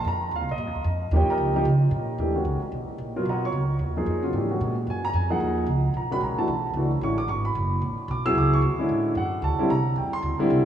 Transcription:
0.04 upright bass F2, grand piano A#5
0.31 upright bass D#2
0.36 grand piano F5
0.40 upright bass C2
0.49 upright bass A#1, grand piano D#5
0.58 upright bass G2
0.67 upright bass F2
0.75 upright bass D#2
0.84 upright bass F2
1.11 upright bass D#2, grand piano F3 A#3 D#4 G4
1.16 grand piano C#5 D#5 G5
1.28 grand piano A#4 D#5 G5 A#5, muted upright bass stroke
1.38 upright bass C#2
1.55 grand piano F3 A#3 D#4 G4
1.65 upright bass C#3
1.91 upright bass A#2
2.18 upright bass D#2, grand piano E3 A3 D4 G4
2.35 grand piano D#3 G#3 C#4 F#4
2.45 upright bass C#2
2.62 muted upright bass stroke
2.72 upright bass B1
2.88 muted upright bass stroke
2.98 upright bass A#1
3.16 grand piano F#3 B3 F4 A#4
3.25 upright bass B1, grand piano A#4 D#5 A#5
3.29 grand piano F#5
3.45 grand piano C#5 C#6
3.52 upright bass C#2
3.79 upright bass D#2
3.97 grand piano F3 A#3 D#4 G#4
4.06 upright bass F2
4.23 grand piano C#3 F#3 B3 F4
4.33 upright bass G#2, grand piano E3 A3 D4 G4
4.50 grand piano D#3 G#3 C#4 F#4
4.61 upright bass A#2
4.87 upright bass F#2, grand piano G#5
5.05 grand piano A#5
5.13 upright bass F2, grand piano G#5
5.30 grand piano F3 A#3 D#4 G#4 F#5
5.40 upright bass D#2
5.66 upright bass C#2
5.94 upright bass B1, grand piano A#5
6.11 grand piano D#3 G#3 C#4 F#4 B5
6.21 upright bass A#1, grand piano A#5
6.38 grand piano E3 A3 D4 F#4 A5, muted upright bass stroke
6.48 upright bass B1
6.74 upright bass C#2, grand piano E3 A3 D4 F#4
7.01 upright bass A1, grand piano D3 G#3 C#4 E4 C#6
7.18 grand piano D6
7.28 upright bass G#1, grand piano C#6
7.45 grand piano B5
7.55 upright bass F#1
7.81 upright bass A1
7.97 muted upright bass stroke
8.08 upright bass B1, grand piano D6
8.25 grand piano F#3 B3 E4 G#4 E6
8.35 upright bass C#2, grand piano D6
8.53 grand piano C#6
8.62 upright bass D2
8.79 grand piano D3 G#3 C#4 E4
8.89 upright bass A2
9.15 upright bass F#2, grand piano F#5
9.42 upright bass D2, grand piano A5
9.58 grand piano D3 G3 C4 E4, muted upright bass stroke
9.70 upright bass C2, grand piano A#5
9.96 upright bass E2, grand piano G5
10.12 grand piano C6, muted upright bass stroke
10.22 upright bass D2
10.39 grand piano D3 G3 C4 E4, muted upright bass stroke
10.50 upright bass C2

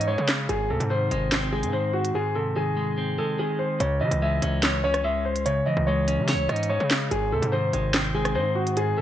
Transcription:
Already playing: 808-style bass G#2, clean electric guitar C#4 C#5
0.01 closed hi-hat
0.07 clean electric guitar G#3, grand piano C#5
0.18 808-style bass C#3
0.28 snare, clap, closed hi-hat
0.49 808-style bass G#1, clean electric guitar G#2, grand piano G#4, closed hi-hat
0.70 808-style bass D#2, clean electric guitar C3, grand piano A4
0.80 808-style bass G#2, closed hi-hat
0.90 clean electric guitar D#3, grand piano C5
1.11 808-style bass G#1, clean electric guitar G#3, closed hi-hat
1.32 clean electric guitar C4, snare, clap, closed hi-hat
1.52 clean electric guitar G#3, grand piano G#4
1.63 808-style bass G#2, closed hi-hat
1.73 clean electric guitar D#3, grand piano C5
1.93 grand piano F#4
2.05 closed hi-hat
2.15 clean electric guitar G#2, grand piano G#4
2.35 clean electric guitar C3, grand piano A4
2.56 clean electric guitar D#3, grand piano G#4
2.77 clean electric guitar G#3
2.98 clean electric guitar C4
3.18 clean electric guitar G#3, grand piano A4
3.39 clean electric guitar D#3, grand piano G#4
3.59 grand piano C5
3.80 808-style bass C#2, clean electric guitar C#3, grand piano C#5, closed hi-hat
4.01 808-style bass C#3, clean electric guitar E3, grand piano D#5
4.11 808-style bass C#2, closed hi-hat
4.22 clean electric guitar G#3, grand piano E5
4.42 808-style bass C#2, clean electric guitar C#4, closed hi-hat
4.63 clean electric guitar C#5, snare, clap, closed hi-hat
4.84 clean electric guitar C#4, grand piano C#5
4.94 cross-stick, closed hi-hat
5.04 clean electric guitar G#3, grand piano E5
5.25 grand piano C5
5.36 closed hi-hat
5.46 clean electric guitar C#3, grand piano C#5, closed hi-hat
5.66 clean electric guitar E3, grand piano D#5
5.77 808-style bass C#2
5.87 clean electric guitar G#3, grand piano C#5
6.08 clean electric guitar C#4, closed hi-hat
6.18 808-style bass C#3
6.28 clean electric guitar C#5, snare, closed hi-hat
6.34 808-style bass C#2
6.49 808-style bass G#2, clean electric guitar C#4, grand piano D#5, cross-stick, closed hi-hat
6.56 closed hi-hat
6.63 closed hi-hat
6.69 clean electric guitar G#3, grand piano C#5
6.80 808-style bass C#3
6.91 snare, clap, closed hi-hat
7.11 808-style bass G#1, clean electric guitar G#2, grand piano G#4, closed hi-hat
7.32 808-style bass D#2, clean electric guitar C3, grand piano A4
7.42 808-style bass G#2, closed hi-hat
7.52 clean electric guitar D#3, grand piano C5
7.73 808-style bass G#1, clean electric guitar G#3, closed hi-hat
7.94 clean electric guitar C4, snare, clap, closed hi-hat
8.14 clean electric guitar G#3, grand piano G#4
8.25 cross-stick, closed hi-hat
8.35 808-style bass G#2, clean electric guitar D#3, grand piano C5
8.55 grand piano F#4
8.67 closed hi-hat
8.77 clean electric guitar G#2, grand piano G#4, closed hi-hat
8.97 clean electric guitar C3, grand piano A4

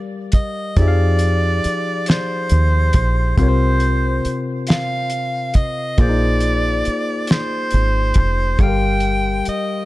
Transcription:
Already playing: tine electric piano G3 G4 A#4 F5
0.32 soprano saxophone D#5, kick, closed hi-hat
0.77 fingered electric bass F2, tine electric piano F3 D#4 G4 G#4, soprano saxophone D5, kick, closed hi-hat
0.82 tine electric piano E5
0.88 tine electric piano F5
1.19 closed hi-hat
1.64 muted fingered electric bass stroke, closed hi-hat
2.06 soprano saxophone C5, snare, closed hi-hat
2.49 fingered electric bass D#2, closed hi-hat
2.93 fingered electric bass A#1, kick, closed hi-hat
3.37 fingered electric bass C2, tine electric piano C3 C4 F4, soprano saxophone C5, kick, closed hi-hat
3.41 tine electric piano A#4 C#5
3.48 tine electric piano C5
3.80 closed hi-hat
4.25 muted fingered electric bass stroke, closed hi-hat
4.67 soprano saxophone F5, snare, closed hi-hat
5.10 closed hi-hat
5.54 soprano saxophone D#5, kick, closed hi-hat
5.98 fingered electric bass A#1, tine electric piano A#3 F4 G#4 C5, soprano saxophone D5, kick, closed hi-hat
6.02 tine electric piano D5
6.09 tine electric piano D#4
6.40 closed hi-hat
6.85 muted fingered electric bass stroke, closed hi-hat
7.27 soprano saxophone C5, snare, closed hi-hat
7.71 fingered electric bass G#1, closed hi-hat
8.14 fingered electric bass F1, kick, closed hi-hat
8.59 fingered electric bass G1, tine electric piano G3 G4 A4, soprano saxophone G5, kick, closed hi-hat
8.63 tine electric piano F5
8.68 tine electric piano A#4
9.00 closed hi-hat
9.45 soprano saxophone D#5, muted fingered electric bass stroke, closed hi-hat

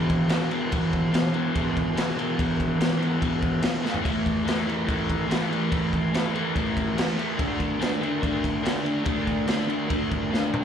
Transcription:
Already playing: overdriven electric guitar E2 B2 E3
0.10 kick, crash
0.29 overdriven electric guitar E2 B2 E3, snare, crash
0.50 overdriven electric guitar E2 B2 E3, crash
0.71 overdriven electric guitar E2 B2 E3, kick, crash
0.93 kick, crash
1.12 overdriven electric guitar E2 B2 E3, snare, crash
1.33 overdriven electric guitar E2 B2 E3, crash
1.54 overdriven electric guitar E2 B2 E3, kick, crash
1.77 kick, crash
1.96 overdriven electric guitar E2 B2 E3, snare, crash
2.16 overdriven electric guitar E2 B2 E3, crash
2.38 overdriven electric guitar E2 B2 E3, kick, crash
2.60 kick, crash
2.79 overdriven electric guitar E2 B2 E3, snare, crash
2.99 overdriven electric guitar E2 B2 E3, crash
3.20 overdriven electric guitar E2 B2 E3, kick, crash
3.42 kick, crash
3.62 overdriven electric guitar E2 B2 E3, snare, crash
3.82 overdriven electric guitar A2 E3 A3, snare
3.94 floor tom
4.03 overdriven electric guitar A2 E3 A3, kick, crash
4.26 kick, crash
4.44 overdriven electric guitar A2 E3 A3, crash
4.49 snare
4.66 overdriven electric guitar A2 E3 A3, crash
4.86 overdriven electric guitar A2 E3 A3, kick, crash
5.10 kick, crash
5.27 overdriven electric guitar A2 E3 A3, crash
5.32 snare
5.49 overdriven electric guitar A2 E3 A3, crash
5.70 overdriven electric guitar A2 E3 A3, kick, crash
5.93 kick, crash
6.12 overdriven electric guitar A2 E3 A3, snare, crash
6.34 overdriven electric guitar A2 E3 A3, crash
6.55 overdriven electric guitar A2 E3 A3, kick, crash
6.77 kick, crash
6.97 overdriven electric guitar A2 E3 A3, snare, crash
7.16 overdriven electric guitar A2 E3 A3, crash
7.37 overdriven electric guitar D3 A3 D4, kick, crash
7.60 kick, crash
7.79 overdriven electric guitar D3 A3 D4, snare, crash
7.99 overdriven electric guitar D3 A3 D4, crash
8.20 overdriven electric guitar D3 A3 D4, kick, crash
8.44 kick, crash
8.63 overdriven electric guitar D3 A3 D4, snare, crash
8.83 overdriven electric guitar D3 A3 D4, crash
9.04 overdriven electric guitar D3 A3 D4, kick, crash
9.27 kick, crash
9.47 overdriven electric guitar D3 A3 D4, snare, crash
9.68 overdriven electric guitar D3 A3 D4, crash
9.88 overdriven electric guitar D3 A3 D4, kick, crash
10.11 kick, crash
10.30 overdriven electric guitar D3 A3 D4, snare
10.52 overdriven electric guitar D3 A3 D4, mid tom

